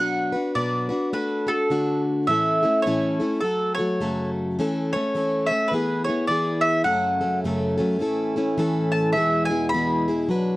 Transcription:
0.00 0.33 B2 medium
0.00 0.33 F#3 medium
0.00 0.33 D4 medium
0.00 0.33 F#4 medium
0.00 0.31 B4 medium
0.00 0.51 F#5 loud
0.32 0.56 D4 soft
0.32 0.56 F#4 soft
0.32 0.55 B4 soft
0.55 0.90 B2 medium
0.55 0.91 F#3 medium
0.55 0.91 D4 medium
0.55 0.89 F#4 medium
0.55 0.88 B4 medium
0.55 1.09 D5 medium
0.89 1.13 D4 soft
0.89 1.13 F#4 soft
0.89 1.12 B4 soft
1.13 1.48 A3 medium
1.13 1.48 D4 medium
1.13 1.47 F#4 medium
1.13 1.46 A4 medium
1.13 1.49 B4 medium
1.47 1.70 D4 soft
1.47 1.70 F#4 soft
1.47 1.70 A4 soft
1.47 2.01 A4 medium
1.70 2.28 D3 medium
1.70 2.29 A3 medium
1.70 2.28 D4 medium
1.70 2.28 F#4 medium
1.70 2.30 A4 medium
2.27 2.63 A2 medium
2.27 2.63 E3 medium
2.27 2.63 A3 medium
2.27 2.63 C#4 medium
2.27 2.62 E4 medium
2.27 2.62 A4 medium
2.27 2.82 E5 loud
2.63 2.86 A3 soft
2.63 2.86 C#4 soft
2.63 2.86 E4 soft
2.63 2.85 A4 medium
2.82 3.20 A2 medium
2.82 3.40 C#5 medium
2.87 3.21 E3 medium
2.87 3.21 A3 medium
2.87 3.21 C#4 medium
2.87 3.20 E4 medium
2.87 3.19 A4 medium
3.20 3.41 A3 soft
3.20 3.42 C#4 soft
3.20 3.43 E4 soft
3.20 3.43 A4 soft
3.41 3.77 F#3 medium
3.41 3.77 A3 medium
3.41 3.78 F#4 medium
3.41 3.74 A4 medium
3.45 3.77 A4 medium
3.75 4.00 A4 soft
3.75 4.29 C#5 medium
3.79 4.00 F#3 soft
3.79 4.00 A3 soft
3.79 4.01 F#4 soft
4.01 4.58 F#2 medium
4.01 4.58 C#3 medium
4.01 4.58 F#3 medium
4.01 4.58 A3 medium
4.01 4.59 F#4 medium
4.01 4.59 A4 medium
4.59 4.93 E3 medium
4.59 4.94 A3 medium
4.59 4.93 C#4 medium
4.59 4.92 A4 medium
4.93 5.14 A3 soft
4.93 5.15 C#4 soft
4.93 5.15 A4 medium
4.93 5.52 C#5 medium
5.15 5.50 E3 medium
5.15 5.50 A3 medium
5.15 5.50 C#4 medium
5.15 5.48 A4 medium
5.46 5.72 A4 medium
5.46 5.71 E5 medium
5.51 5.73 A3 soft
5.51 5.73 C#4 soft
5.68 6.07 E3 medium
5.68 6.04 B4 medium
5.73 6.07 B3 medium
5.73 6.07 E4 medium
5.73 6.06 G#4 medium
6.04 6.30 G#4 soft
6.04 6.27 C#5 medium
6.08 6.29 B3 soft
6.08 6.29 E4 soft
6.27 6.85 E3 medium
6.27 6.85 B3 medium
6.27 6.86 E4 medium
6.27 6.86 G#4 medium
6.27 6.64 D5 medium
6.61 6.84 E5 medium
6.84 7.20 F#2 medium
6.84 8.01 F#2 medium
6.84 7.21 C#3 medium
6.84 8.01 C#3 medium
6.84 7.21 F#3 medium
6.84 7.21 A3 medium
6.84 7.20 C#4 medium
6.84 7.20 A4 medium
6.84 7.39 F#5 medium
6.88 8.01 A3 medium
7.21 7.44 F#3 soft
7.21 7.44 A3 soft
7.21 7.44 C#4 soft
7.21 7.44 A4 soft
7.44 7.79 F#2 medium
7.44 7.79 C#3 medium
7.44 7.79 F#3 medium
7.44 7.79 A3 medium
7.44 7.78 C#4 medium
7.44 7.76 A4 medium
7.78 7.99 F#3 soft
7.78 7.98 A3 soft
7.78 7.99 C#4 soft
7.78 8.01 A4 medium
7.99 9.16 E3 medium
7.99 8.35 A3 medium
7.99 8.36 C#4 medium
7.99 8.36 E4 medium
7.99 8.35 A4 medium
8.03 9.16 A2 medium
8.03 9.16 C#4 medium
8.36 8.57 A3 soft
8.36 8.58 C#4 medium
8.36 8.58 E4 soft
8.36 8.58 A4 medium
8.58 9.16 A2 medium
8.58 9.14 E3 medium
8.58 9.15 A3 medium
8.58 9.16 C#4 medium
8.58 9.16 E4 medium
8.58 9.17 A4 medium
8.92 9.12 A5 medium
9.13 10.56 B2 medium
9.13 9.50 E3 medium
9.13 10.29 G#3 medium
9.13 9.51 G#3 medium
9.13 9.51 B3 medium
9.13 9.45 E5 medium
9.17 10.30 E2 medium
9.17 9.50 E4 medium
9.17 9.49 G#4 medium
9.45 9.69 G#5 medium
9.50 9.73 B3 soft
9.50 9.73 E4 soft
9.50 9.73 G#4 soft
9.69 10.25 B5 medium
9.74 10.08 E3 medium
9.74 10.08 G#3 medium
9.74 10.08 B3 medium
9.74 10.08 E4 medium
9.74 10.07 G#4 medium
10.08 10.30 B3 soft
10.08 10.30 E4 soft
10.08 10.30 G#4 medium
10.29 10.56 F#3 medium
10.29 10.56 D4 medium
10.29 10.56 F#4 medium
10.29 10.56 B4 medium

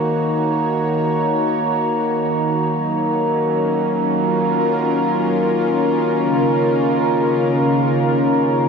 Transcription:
0.00 2.67 D#3 medium
0.00 8.69 D#3 medium
0.00 8.69 A#3 medium
0.00 3.85 D#4 medium
0.00 2.68 F#4 medium
0.00 3.76 C#5 medium
0.00 8.69 A#5 medium
2.70 6.22 F#3 medium
3.30 8.69 C#4 medium
4.12 8.69 F4 medium
4.28 8.69 A#4 medium
6.22 8.69 C#3 medium

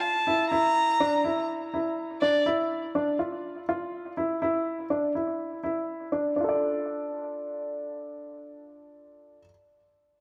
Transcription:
0.00 0.21 F4 medium
0.00 0.49 A5 medium
0.27 0.49 E4 medium
0.50 0.95 E4 medium
0.50 1.44 A#5 loud
1.00 1.22 D4 medium
1.24 1.68 E4 medium
1.74 2.17 E4 medium
2.21 2.44 D4 medium
2.21 2.44 D5 loud
2.46 2.90 E4 medium
2.95 3.17 D4 medium
3.19 3.63 F4 medium
3.69 4.12 F4 medium
4.17 4.39 E4 medium
4.42 4.85 E4 medium
4.90 5.12 D4 medium
5.15 5.58 E4 medium
5.64 6.07 E4 medium
6.12 6.34 D4 medium
6.36 9.37 D4 medium
6.41 9.41 F4 medium
6.41 9.45 A4 medium
6.49 9.49 D5 medium

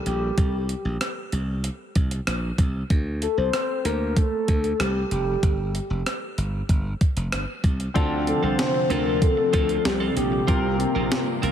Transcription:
0.06 0.30 A#1 medium
0.06 0.66 G4 medium
0.06 closed hi-hat medium
0.38 0.73 C2 medium
0.38 kick medium
0.38 closed hi-hat medium
0.69 closed hi-hat medium
0.85 0.97 A#1 medium
1.01 cross-stick loud
1.01 closed hi-hat medium
1.32 1.68 C2 medium
1.32 closed hi-hat medium
1.64 closed hi-hat medium
1.95 2.19 C2 medium
1.95 kick medium
1.95 closed hi-hat medium
2.11 closed hi-hat medium
2.27 2.51 A#1 medium
2.27 cross-stick loud
2.27 closed hi-hat medium
2.58 2.82 C2 medium
2.58 kick medium
2.58 closed hi-hat medium
2.90 3.26 D2 loud
2.90 kick loud
2.90 closed hi-hat medium
3.22 3.39 A4 medium
3.22 closed hi-hat medium
3.38 3.49 C2 medium
3.38 3.87 C5 loud
3.53 cross-stick loud
3.53 closed hi-hat medium
3.85 4.20 D2 medium
3.85 4.18 A#4 loud
3.85 closed hi-hat medium
4.17 4.82 A4 loud
4.17 kick medium
4.17 closed hi-hat medium
4.48 4.72 D2 medium
4.48 kick medium
4.48 closed hi-hat medium
4.64 closed hi-hat medium
4.80 5.03 C2 medium
4.80 5.11 G4 medium
4.80 cross-stick loud
4.80 closed hi-hat medium
5.11 5.35 F1 medium
5.11 5.71 G4 medium
5.11 closed hi-hat medium
5.43 5.78 G1 medium
5.43 kick loud
5.43 closed hi-hat medium
5.75 closed hi-hat medium
5.90 6.02 F1 medium
6.06 cross-stick loud
6.06 closed hi-hat medium
6.38 6.61 G1 medium
6.38 closed hi-hat medium
6.69 6.93 G1 medium
6.69 kick medium
6.69 closed hi-hat medium
7.01 muted slap bass stroke soft
7.01 kick medium
7.01 closed hi-hat medium
7.17 7.28 F1 medium
7.17 closed hi-hat medium
7.32 7.44 G1 medium
7.32 cross-stick loud
7.32 closed hi-hat medium
7.64 7.88 C2 medium
7.64 kick medium
7.64 closed hi-hat medium
7.80 closed hi-hat soft
7.94 8.31 D2 loud
7.94 11.52 C3 medium
7.94 8.86 D3 medium
7.94 10.46 F3 medium
7.94 10.44 C4 medium
7.94 8.24 C4 medium
7.94 10.46 C4 medium
7.94 10.44 D4 medium
7.94 10.46 D4 medium
7.94 10.44 F4 medium
7.94 8.25 F4 medium
7.94 8.25 A4 medium
7.94 10.45 A5 medium
7.94 kick medium
7.94 closed hi-hat medium
8.27 8.42 A4 medium
8.27 muted clean electric guitar stroke soft
8.27 closed hi-hat medium
8.43 8.55 C2 medium
8.43 8.57 C4 soft
8.43 8.58 F4 medium
8.43 8.58 A4 medium
8.43 8.92 C5 loud
8.58 muted clean electric guitar stroke soft
8.58 snare loud
8.58 closed hi-hat medium
8.74 muted clean electric guitar stroke soft
8.90 9.26 D2 medium
8.90 9.06 C4 medium
8.90 9.06 F4 medium
8.90 9.05 A4 medium
8.90 9.24 A#4 medium
8.90 closed hi-hat medium
9.06 9.20 C4 soft
9.06 9.21 F4 medium
9.06 9.22 A4 medium
9.22 9.87 A4 loud
9.22 muted clean electric guitar stroke soft
9.22 kick medium
9.22 closed hi-hat medium
9.37 muted clean electric guitar stroke soft
9.53 9.77 D2 medium
9.53 9.69 C4 medium
9.53 9.68 F4 medium
9.53 9.67 A4 medium
9.53 kick medium
9.53 closed hi-hat medium
9.69 9.84 C4 soft
9.69 9.84 F4 soft
9.69 9.85 A4 medium
9.69 closed hi-hat medium
9.85 10.09 C2 medium
9.85 10.17 G4 medium
9.85 muted clean electric guitar stroke soft
9.85 snare loud
9.85 closed hi-hat medium
10.00 10.15 C4 medium
10.00 10.16 F4 medium
10.00 10.16 A4 medium
10.16 10.40 A#1 medium
10.16 10.76 G4 medium
10.16 muted clean electric guitar stroke soft
10.16 closed hi-hat medium
10.32 muted clean electric guitar stroke soft
10.47 10.84 C2 loud
10.47 11.39 C3 medium
10.47 11.52 G3 medium
10.47 11.52 A#3 medium
10.47 11.52 C4 medium
10.47 10.77 C4 medium
10.47 11.52 F4 medium
10.47 10.77 F4 medium
10.47 11.52 G4 medium
10.47 10.78 A#4 medium
10.47 11.52 A#4 medium
10.47 kick loud
10.47 closed hi-hat medium
10.79 muted clean electric guitar stroke soft
10.79 closed hi-hat medium
10.95 11.07 A#1 medium
10.95 11.10 C4 medium
10.95 11.10 F4 medium
10.95 11.11 A#4 medium
11.12 snare loud
11.12 closed hi-hat medium
11.27 muted clean electric guitar stroke soft
11.42 11.52 C2 medium
11.42 11.52 C4 medium
11.42 11.52 F4 medium
11.42 11.52 A#4 medium
11.42 closed hi-hat medium

